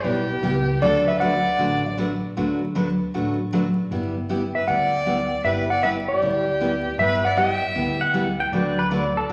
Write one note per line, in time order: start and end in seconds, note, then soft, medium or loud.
0.00 0.27 G3 medium
0.00 0.81 G4 medium
0.00 0.84 B4 medium
0.04 0.37 B1 medium
0.04 0.27 B3 medium
0.04 0.27 E4 medium
0.04 0.27 G4 medium
0.43 0.76 C#2 medium
0.43 0.55 G3 medium
0.43 0.55 B3 medium
0.43 0.55 E4 medium
0.43 0.55 G4 medium
0.81 1.44 D2 medium
0.81 1.04 D3 medium
0.81 1.04 F#3 medium
0.81 1.04 A3 medium
0.81 1.05 D4 medium
0.81 1.05 F#4 medium
0.81 1.05 A4 medium
0.81 1.05 B4 medium
0.81 1.08 D5 loud
1.07 1.19 B4 medium
1.07 1.20 E5 medium
1.20 1.32 D3 medium
1.20 1.32 F#3 medium
1.20 1.33 A3 medium
1.20 1.33 D4 medium
1.20 1.33 F#4 medium
1.20 1.33 B4 medium
1.20 1.94 D5 medium
1.20 1.93 F#5 loud
1.59 2.21 A1 medium
1.59 1.81 D3 medium
1.59 1.82 F#3 medium
1.59 1.82 A3 medium
1.59 1.82 D4 medium
1.59 1.82 F#4 medium
1.59 1.82 B4 medium
1.98 2.09 D3 medium
1.98 2.10 F#3 medium
1.98 2.10 A3 medium
1.98 2.10 D4 medium
1.98 2.10 F#4 medium
1.98 2.10 B4 medium
2.37 2.99 D2 medium
2.37 2.59 D3 medium
2.37 2.59 F#3 medium
2.37 2.59 A3 medium
2.37 2.59 D4 medium
2.37 2.59 F#4 medium
2.37 2.60 B4 medium
2.75 2.87 D3 medium
2.75 2.87 F#3 medium
2.75 2.87 A3 medium
2.75 2.87 D4 medium
2.75 2.87 F#4 medium
2.75 2.87 B4 medium
3.14 3.76 A1 medium
3.14 3.36 D3 medium
3.14 3.36 F#3 medium
3.14 3.36 A3 medium
3.14 3.37 D4 medium
3.14 3.37 F#4 medium
3.14 3.37 B4 medium
3.52 3.64 D3 medium
3.52 3.64 F#3 medium
3.52 3.64 A3 medium
3.52 3.65 D4 medium
3.52 3.65 F#4 medium
3.52 3.65 B4 medium
3.91 4.53 G1 medium
3.91 4.14 G3 medium
3.91 4.14 B3 medium
3.91 4.14 E4 medium
3.91 4.14 G4 medium
4.29 4.41 G3 medium
4.29 4.41 B3 medium
4.29 4.42 E4 medium
4.29 4.42 G4 medium
4.55 4.70 B4 medium
4.55 4.68 E5 medium
4.68 5.29 D2 medium
4.68 4.90 G3 medium
4.68 4.90 B3 medium
4.68 4.91 E4 medium
4.68 4.91 G4 medium
4.68 5.44 D5 medium
4.68 5.47 F#5 medium
5.06 5.18 G3 medium
5.06 5.18 B3 medium
5.06 5.18 E4 medium
5.06 5.19 G4 medium
5.44 6.06 G1 medium
5.44 5.67 G3 medium
5.44 5.68 B3 medium
5.44 5.68 E4 medium
5.44 5.68 G4 medium
5.44 5.65 B4 medium
5.44 5.52 E5 medium
5.70 5.83 D5 medium
5.70 5.84 F#5 medium
5.83 5.95 G3 medium
5.83 5.96 B3 medium
5.83 5.96 E4 medium
5.83 5.96 G4 medium
5.83 5.95 B4 medium
5.83 5.90 E5 medium
6.08 6.95 G4 medium
6.08 6.99 D5 medium
6.22 6.83 D2 medium
6.22 6.45 G3 medium
6.22 6.45 B3 medium
6.22 6.45 E4 medium
6.22 6.45 G4 medium
6.60 6.72 G3 medium
6.60 6.73 B3 medium
6.60 6.73 E4 medium
6.60 6.73 G4 medium
6.98 7.60 G1 medium
6.98 7.22 G3 medium
6.98 7.22 B3 medium
6.98 7.22 E4 medium
6.98 7.22 G4 medium
6.98 7.23 B4 medium
6.98 7.25 E5 loud
7.25 7.40 D5 medium
7.25 7.30 F#5 medium
7.37 7.49 G3 medium
7.37 7.49 B3 medium
7.37 7.50 E4 medium
7.37 7.50 G4 medium
7.37 8.15 E5 medium
7.37 8.15 G5 loud
7.75 8.37 D2 medium
7.75 7.98 G3 medium
7.75 7.98 B3 medium
7.75 7.98 E4 medium
7.75 7.99 G4 medium
8.01 8.39 F#5 loud
8.14 8.26 G3 medium
8.14 8.26 B3 medium
8.14 8.26 E4 medium
8.14 8.27 G4 medium
8.40 8.53 G5 medium
8.52 9.14 D2 loud
8.52 8.75 D3 medium
8.52 8.76 F#3 medium
8.52 8.76 A3 medium
8.52 8.76 D4 medium
8.52 8.76 F#4 medium
8.52 8.76 B4 medium
8.52 8.78 D5 medium
8.79 8.91 B4 medium
8.91 9.03 D3 medium
8.91 9.03 F#3 medium
8.91 9.03 A3 medium
8.91 9.03 D4 medium
8.91 9.04 F#4 medium
8.91 9.04 B4 medium
8.91 9.16 D5 medium
9.17 9.30 A4 medium
9.29 9.33 A1 medium
9.29 9.33 D3 medium
9.29 9.33 F#3 medium
9.29 9.33 A3 medium